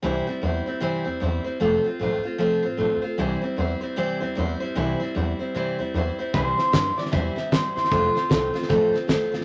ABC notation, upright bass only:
X:1
M:4/4
L:1/8
Q:"Swing" 1/4=152
K:C
V:1 name="Upright bass" clef=bass
C,, z E,, z G,, E,, E,, z | F,,, z A,,, z C,, A,,, A,,, z | C,, z E,, z G,, E,, E,, z | C,, z E,, z G,, E,, E,, z |
C,, z G,, z E,, z A,,, G,, | F,,, z C,, z A,,, z D,, A,,, |]